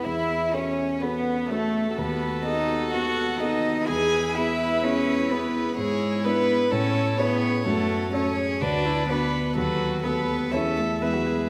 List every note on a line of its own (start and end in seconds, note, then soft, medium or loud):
0.05 0.53 E2 soft
0.05 0.55 E4 medium
0.05 0.53 E4 medium
0.05 0.55 E5 medium
0.53 0.98 C#4 soft
0.53 1.03 C#4 medium
0.53 1.04 C#4 medium
0.53 1.01 C#4 soft
0.53 0.98 F#4 soft
0.53 0.99 A4 soft
0.53 1.02 C#5 medium
1.02 1.49 B3 medium
1.02 1.52 B3 medium
1.02 1.47 C#4 soft
1.02 1.47 F#4 soft
1.02 1.47 A4 soft
1.02 1.52 B4 soft
1.49 1.96 A3 medium
1.49 1.98 A3 medium
1.49 1.97 A3 medium
1.49 1.94 C#4 soft
1.49 1.94 F#4 soft
1.49 1.99 A4 medium
1.49 1.94 A4 soft
1.97 2.44 D#2 soft
1.97 2.44 B3 medium
1.97 3.84 F#4 soft
1.97 3.84 A4 medium
1.97 2.44 B4 medium
2.45 2.89 B3 soft
2.45 2.91 D#4 medium
2.45 2.89 F#4 soft
2.45 2.90 A4 soft
2.45 2.92 D#5 medium
2.92 3.37 B3 soft
2.92 3.39 F#4 medium
2.92 3.37 F#4 soft
2.92 3.38 A4 soft
2.92 3.42 F#5 medium
3.40 3.85 B3 soft
3.40 3.89 D#4 medium
3.40 3.85 F#4 soft
3.40 3.85 A4 soft
3.40 3.87 D#5 medium
3.88 4.35 E2 soft
3.88 5.74 E4 soft
3.88 4.35 G#4 medium
3.88 5.74 B4 medium
3.88 4.37 G#5 medium
4.35 4.80 B3 soft
4.35 4.86 E4 medium
4.35 4.80 E4 soft
4.35 4.80 G#4 soft
4.35 4.82 E5 medium
4.83 5.27 B3 soft
4.83 5.33 C#4 medium
4.83 5.27 E4 soft
4.83 5.27 G#4 soft
4.83 5.32 C#5 medium
5.31 5.74 B3 soft
5.31 5.77 B3 medium
5.31 5.74 E4 soft
5.31 5.74 G#4 soft
5.31 5.77 B4 medium
5.77 6.24 G#2 soft
5.77 6.26 G#3 medium
5.77 6.68 E4 medium
5.77 6.24 G#4 medium
5.77 6.26 C#5 medium
6.24 6.71 B3 medium
6.24 6.68 D4 soft
6.24 6.69 E4 soft
6.24 6.73 B4 medium
6.24 6.71 B4 medium
6.24 6.69 B4 soft
6.71 7.18 A2 soft
6.71 7.18 C#4 medium
6.71 7.21 E4 medium
6.71 7.20 A4 medium
6.71 7.21 C#5 medium
7.18 7.65 B3 medium
7.18 7.62 C#4 soft
7.18 7.62 E4 soft
7.18 7.68 G#4 soft
7.18 7.65 B4 medium
7.18 8.12 C#5 soft
7.18 7.63 C#5 soft
7.66 8.12 F#2 soft
7.66 8.12 A3 medium
7.66 8.15 F#4 soft
7.66 8.13 A4 medium
8.13 8.63 C#4 medium
8.13 8.57 C#4 soft
8.13 8.58 F#4 soft
8.13 8.39 A4 soft
8.13 8.63 C#5 soft
8.13 8.63 C#5 medium
8.13 8.58 C#5 soft
8.37 8.63 G#4 medium
8.61 9.08 D2 medium
8.61 9.09 D4 medium
8.61 8.88 F#4 medium
8.61 9.08 B4 medium
8.61 9.11 D5 medium
8.86 9.08 E4 medium
9.09 9.57 B3 medium
9.09 9.55 D4 medium
9.09 9.53 D4 soft
9.09 9.53 F#4 soft
9.09 9.55 B4 soft
9.09 9.56 B4 medium
9.09 9.53 B4 soft
9.56 10.03 D#2 soft
9.56 10.05 F#3 medium
9.56 10.05 F#4 medium
9.56 10.01 A4 medium
9.56 10.01 B4 medium
10.03 10.48 A3 soft
10.03 10.54 B3 medium
10.03 10.49 F#4 soft
10.03 10.51 A4 medium
10.03 10.53 B4 soft
10.03 10.51 B4 medium
10.03 10.49 B4 soft
10.51 11.00 E2 soft
10.51 10.98 A3 soft
10.51 10.78 C#4 medium
10.51 10.98 E4 soft
10.51 11.03 A4 medium
10.51 10.60 C#5 medium
10.51 11.01 E5 medium
10.51 10.98 E5 soft
10.76 11.03 A3 medium
10.76 10.85 A4 soft
11.01 11.49 E2 soft
11.01 11.17 G#3 medium
11.01 11.48 B3 soft
11.01 11.48 E4 soft
11.01 11.15 G#4 soft
11.01 11.49 B4 soft
11.01 11.49 E5 soft
11.01 11.48 E5 soft
11.13 11.28 F#3 medium
11.13 11.28 F#4 soft
11.26 11.49 G#3 medium
11.26 11.49 G#4 soft